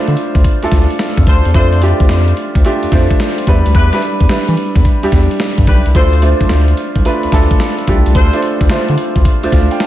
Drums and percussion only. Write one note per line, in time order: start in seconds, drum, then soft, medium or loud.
0.08 closed hi-hat soft
0.17 closed hi-hat medium
0.35 kick medium
0.35 closed hi-hat medium
0.44 kick medium
0.44 closed hi-hat medium
0.63 closed hi-hat medium
0.72 kick medium
0.72 snare medium
0.72 closed hi-hat medium
0.90 closed hi-hat medium
0.99 snare loud
0.99 closed hi-hat medium
1.17 kick loud
1.17 closed hi-hat medium
1.27 kick medium
1.27 closed hi-hat medium
1.45 closed hi-hat medium
1.54 kick loud
1.54 closed hi-hat medium
1.72 closed hi-hat medium
1.82 closed hi-hat medium
2.00 kick medium
2.00 closed hi-hat medium
2.09 snare loud
2.09 closed hi-hat medium
2.28 closed hi-hat soft
2.37 closed hi-hat medium
2.55 kick medium
2.55 closed hi-hat medium
2.65 closed hi-hat medium
2.83 closed hi-hat medium
2.92 kick medium
2.92 snare medium
2.92 closed hi-hat medium
3.11 kick medium
3.11 closed hi-hat medium
3.20 snare loud
3.20 closed hi-hat medium
3.38 closed hi-hat medium
3.47 kick medium
3.47 closed hi-hat medium
3.66 closed hi-hat medium
3.75 kick loud
3.75 closed hi-hat medium
3.93 snare medium
3.93 closed hi-hat medium
4.02 closed hi-hat medium
4.21 kick medium
4.21 closed hi-hat medium
4.29 snare loud
4.29 closed hi-hat medium
4.48 closed hi-hat medium
4.57 closed hi-hat medium
4.76 kick medium
4.76 closed hi-hat medium
4.85 kick medium
4.85 closed hi-hat medium
5.03 closed hi-hat medium
5.12 kick medium
5.12 snare medium
5.12 closed hi-hat medium
5.31 closed hi-hat medium
5.40 snare loud
5.40 closed hi-hat medium
5.58 kick medium
5.58 closed hi-hat medium
5.67 kick medium
5.67 closed hi-hat medium
5.86 closed hi-hat medium
5.95 kick loud
5.95 closed hi-hat medium
6.13 closed hi-hat soft
6.22 closed hi-hat medium
6.41 kick medium
6.41 closed hi-hat medium
6.49 snare loud
6.49 closed hi-hat medium
6.68 closed hi-hat medium
6.77 closed hi-hat medium
6.96 kick medium
6.96 closed hi-hat medium
7.05 closed hi-hat medium
7.23 closed hi-hat medium
7.32 kick medium
7.32 snare medium
7.32 closed hi-hat medium
7.51 kick medium
7.51 closed hi-hat medium
7.60 snare loud
7.60 closed hi-hat medium
7.78 closed hi-hat medium
7.87 kick medium
7.87 closed hi-hat medium
8.06 closed hi-hat medium
8.15 kick loud
8.15 closed hi-hat medium
8.33 closed hi-hat medium
8.42 closed hi-hat medium
8.61 kick medium
8.61 closed hi-hat soft
8.70 snare loud
8.70 closed hi-hat medium
8.88 closed hi-hat medium
8.98 closed hi-hat medium
9.16 kick medium
9.16 closed hi-hat medium
9.25 kick medium
9.25 closed hi-hat medium
9.43 closed hi-hat medium
9.52 kick medium
9.52 snare medium
9.52 closed hi-hat medium
9.71 closed hi-hat medium
9.80 snare loud
9.80 closed hi-hat medium